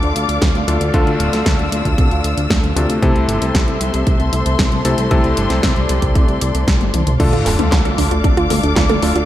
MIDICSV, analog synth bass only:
0, 0, Header, 1, 2, 480
1, 0, Start_track
1, 0, Key_signature, -1, "minor"
1, 0, Tempo, 521739
1, 864, Time_signature, 4, 2, 24, 8
1, 8512, End_track
2, 0, Start_track
2, 0, Title_t, "Analog synth bass"
2, 0, Program_c, 0, 38
2, 24, Note_on_c, 0, 38, 76
2, 118, Note_off_c, 0, 38, 0
2, 143, Note_on_c, 0, 38, 91
2, 238, Note_off_c, 0, 38, 0
2, 263, Note_on_c, 0, 38, 78
2, 358, Note_off_c, 0, 38, 0
2, 382, Note_on_c, 0, 38, 103
2, 477, Note_off_c, 0, 38, 0
2, 504, Note_on_c, 0, 38, 74
2, 598, Note_off_c, 0, 38, 0
2, 623, Note_on_c, 0, 38, 92
2, 717, Note_off_c, 0, 38, 0
2, 744, Note_on_c, 0, 38, 83
2, 838, Note_off_c, 0, 38, 0
2, 863, Note_on_c, 0, 38, 103
2, 957, Note_off_c, 0, 38, 0
2, 983, Note_on_c, 0, 38, 76
2, 1077, Note_off_c, 0, 38, 0
2, 1103, Note_on_c, 0, 26, 93
2, 1197, Note_off_c, 0, 26, 0
2, 1223, Note_on_c, 0, 38, 81
2, 1317, Note_off_c, 0, 38, 0
2, 1342, Note_on_c, 0, 38, 102
2, 1437, Note_off_c, 0, 38, 0
2, 1462, Note_on_c, 0, 38, 79
2, 1557, Note_off_c, 0, 38, 0
2, 1582, Note_on_c, 0, 38, 91
2, 1677, Note_off_c, 0, 38, 0
2, 1702, Note_on_c, 0, 38, 80
2, 1797, Note_off_c, 0, 38, 0
2, 1822, Note_on_c, 0, 36, 106
2, 1917, Note_off_c, 0, 36, 0
2, 1943, Note_on_c, 0, 38, 73
2, 2038, Note_off_c, 0, 38, 0
2, 2063, Note_on_c, 0, 38, 93
2, 2157, Note_off_c, 0, 38, 0
2, 2183, Note_on_c, 0, 38, 77
2, 2277, Note_off_c, 0, 38, 0
2, 2302, Note_on_c, 0, 38, 104
2, 2397, Note_off_c, 0, 38, 0
2, 2422, Note_on_c, 0, 38, 74
2, 2517, Note_off_c, 0, 38, 0
2, 2542, Note_on_c, 0, 38, 93
2, 2637, Note_off_c, 0, 38, 0
2, 2661, Note_on_c, 0, 38, 81
2, 2757, Note_off_c, 0, 38, 0
2, 2783, Note_on_c, 0, 36, 102
2, 2877, Note_off_c, 0, 36, 0
2, 2901, Note_on_c, 0, 36, 75
2, 2997, Note_off_c, 0, 36, 0
2, 3021, Note_on_c, 0, 31, 94
2, 3116, Note_off_c, 0, 31, 0
2, 3141, Note_on_c, 0, 36, 82
2, 3236, Note_off_c, 0, 36, 0
2, 3262, Note_on_c, 0, 36, 104
2, 3357, Note_off_c, 0, 36, 0
2, 3381, Note_on_c, 0, 36, 79
2, 3476, Note_off_c, 0, 36, 0
2, 3502, Note_on_c, 0, 36, 96
2, 3597, Note_off_c, 0, 36, 0
2, 3623, Note_on_c, 0, 36, 85
2, 3717, Note_off_c, 0, 36, 0
2, 3742, Note_on_c, 0, 36, 105
2, 3837, Note_off_c, 0, 36, 0
2, 3862, Note_on_c, 0, 36, 75
2, 3957, Note_off_c, 0, 36, 0
2, 3981, Note_on_c, 0, 36, 91
2, 4077, Note_off_c, 0, 36, 0
2, 4102, Note_on_c, 0, 36, 76
2, 4197, Note_off_c, 0, 36, 0
2, 4222, Note_on_c, 0, 36, 103
2, 4317, Note_off_c, 0, 36, 0
2, 4342, Note_on_c, 0, 36, 75
2, 4437, Note_off_c, 0, 36, 0
2, 4461, Note_on_c, 0, 36, 97
2, 4556, Note_off_c, 0, 36, 0
2, 4582, Note_on_c, 0, 36, 81
2, 4677, Note_off_c, 0, 36, 0
2, 4702, Note_on_c, 0, 36, 101
2, 4797, Note_off_c, 0, 36, 0
2, 4821, Note_on_c, 0, 36, 75
2, 4916, Note_off_c, 0, 36, 0
2, 4941, Note_on_c, 0, 31, 97
2, 5037, Note_off_c, 0, 31, 0
2, 5062, Note_on_c, 0, 36, 82
2, 5157, Note_off_c, 0, 36, 0
2, 5182, Note_on_c, 0, 36, 99
2, 5277, Note_off_c, 0, 36, 0
2, 5302, Note_on_c, 0, 36, 77
2, 5397, Note_off_c, 0, 36, 0
2, 5423, Note_on_c, 0, 36, 95
2, 5517, Note_off_c, 0, 36, 0
2, 5542, Note_on_c, 0, 36, 83
2, 5637, Note_off_c, 0, 36, 0
2, 5661, Note_on_c, 0, 36, 105
2, 5757, Note_off_c, 0, 36, 0
2, 5783, Note_on_c, 0, 36, 74
2, 5877, Note_off_c, 0, 36, 0
2, 5904, Note_on_c, 0, 36, 93
2, 5998, Note_off_c, 0, 36, 0
2, 6022, Note_on_c, 0, 36, 75
2, 6117, Note_off_c, 0, 36, 0
2, 6142, Note_on_c, 0, 36, 105
2, 6237, Note_off_c, 0, 36, 0
2, 6263, Note_on_c, 0, 31, 75
2, 6357, Note_off_c, 0, 31, 0
2, 6383, Note_on_c, 0, 36, 97
2, 6477, Note_off_c, 0, 36, 0
2, 6502, Note_on_c, 0, 36, 83
2, 6597, Note_off_c, 0, 36, 0
2, 6622, Note_on_c, 0, 38, 106
2, 6717, Note_off_c, 0, 38, 0
2, 6743, Note_on_c, 0, 38, 78
2, 6837, Note_off_c, 0, 38, 0
2, 6862, Note_on_c, 0, 26, 96
2, 6957, Note_off_c, 0, 26, 0
2, 6983, Note_on_c, 0, 38, 84
2, 7077, Note_off_c, 0, 38, 0
2, 7102, Note_on_c, 0, 38, 102
2, 7197, Note_off_c, 0, 38, 0
2, 7221, Note_on_c, 0, 38, 79
2, 7317, Note_off_c, 0, 38, 0
2, 7341, Note_on_c, 0, 38, 96
2, 7437, Note_off_c, 0, 38, 0
2, 7462, Note_on_c, 0, 38, 82
2, 7557, Note_off_c, 0, 38, 0
2, 7581, Note_on_c, 0, 36, 109
2, 7677, Note_off_c, 0, 36, 0
2, 7700, Note_on_c, 0, 38, 76
2, 7796, Note_off_c, 0, 38, 0
2, 7822, Note_on_c, 0, 38, 96
2, 7917, Note_off_c, 0, 38, 0
2, 7942, Note_on_c, 0, 38, 79
2, 8037, Note_off_c, 0, 38, 0
2, 8063, Note_on_c, 0, 38, 105
2, 8157, Note_off_c, 0, 38, 0
2, 8182, Note_on_c, 0, 38, 75
2, 8277, Note_off_c, 0, 38, 0
2, 8302, Note_on_c, 0, 38, 98
2, 8397, Note_off_c, 0, 38, 0
2, 8422, Note_on_c, 0, 38, 85
2, 8512, Note_off_c, 0, 38, 0
2, 8512, End_track
0, 0, End_of_file